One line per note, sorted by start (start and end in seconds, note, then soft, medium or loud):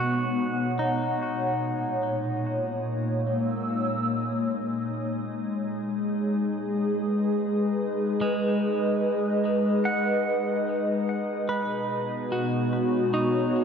0.00 1.64 B2 medium
0.00 1.43 G#3 medium
0.00 13.64 G#3 medium
0.00 1.64 B3 medium
0.00 13.64 D#4 medium
0.00 0.77 F#4 medium
0.00 6.44 C#5 medium
0.00 2.95 F#5 medium
0.79 3.89 D#4 medium
1.63 4.92 A#2 medium
2.42 4.92 A#3 medium
3.12 4.93 E6 medium
4.93 11.50 G#3 medium
5.62 12.81 G#4 medium
6.89 12.82 B4 medium
7.90 12.82 D#5 medium
8.21 11.30 G#3 medium
9.85 12.94 F#5 medium
11.49 13.64 B2 medium
11.49 13.64 B4 medium
11.87 13.64 B3 medium
12.07 13.64 F#4 medium
12.32 13.10 F#4 medium
12.49 13.64 C#5 medium
13.14 13.64 D#4 medium